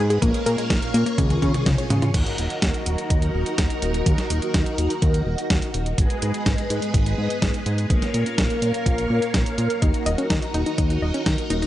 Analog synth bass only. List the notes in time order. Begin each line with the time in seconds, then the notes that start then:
0.00 G#2
0.22 A#1
0.46 A#2
0.70 A#1
0.94 A#2
1.18 C#2
1.42 C#3
1.66 C#2
1.90 C#3
2.14 D#2
2.38 D#1
2.62 D#2
2.86 D#1
3.10 D#2
3.34 D#1
3.58 D#2
3.82 D#1
4.06 D#2
4.30 D#1
4.54 D#2
4.78 D#1
5.02 D#2
5.26 D#1
5.50 D#2
5.74 D#1
5.98 G#1
6.22 G#2
6.46 G#1
6.70 G#2
6.94 G#1
7.18 G#2
7.42 G#1
7.66 G#2
7.90 A#1
8.14 A#2
8.38 A#1
8.62 A#2
8.86 A#1
9.10 A#2
9.34 A#1
9.58 A#2
9.82 D#2
10.06 D#1
10.30 D#2
10.54 D#1
10.78 D#2
11.02 D#1
11.26 D#2
11.50 D#1